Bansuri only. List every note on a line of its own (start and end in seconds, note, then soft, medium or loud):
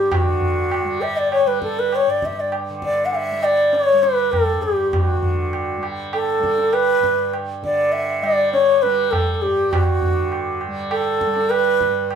0.00 0.13 G4 medium
0.12 1.03 F#4 medium
1.02 1.19 E5 medium
1.18 1.31 D5 medium
1.32 1.49 C#5 medium
1.47 1.62 B4 medium
1.63 1.81 A4 medium
1.79 1.97 B4 medium
1.96 2.11 C#5 medium
2.10 2.27 D5 medium
2.26 2.41 E5 medium
2.40 2.54 D5 medium
2.85 3.07 D5 medium
3.06 3.17 F#5 medium
3.15 3.45 E5 medium
3.44 3.76 D5 medium
3.75 4.05 C#5 medium
4.03 4.33 B4 medium
4.32 4.64 A4 medium
4.62 4.93 G4 medium
4.93 5.05 G4 medium
5.05 5.83 F#4 medium
6.14 6.75 A4 medium
6.73 7.33 B4 medium
7.64 7.94 D5 medium
7.92 8.25 E5 medium
8.23 8.52 D5 medium
8.53 8.84 C#5 medium
8.82 9.13 B4 medium
9.11 9.34 A4 medium
9.34 9.44 A4 medium
9.42 9.73 G4 medium
9.72 10.62 F#4 medium
10.91 11.51 A4 medium
11.50 12.10 B4 loud